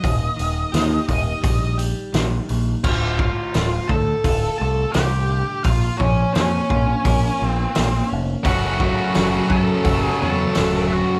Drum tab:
CC |--------|x-------|--------|--------|
HH |oooooooo|--o-o-o-|o-o-o-o-|o-o-o-o-|
SD |--o---o-|--o---o-|--o---o-|--o---o-|
BD |o--oo---|oo-oo---|oo-oo---|oo-oo---|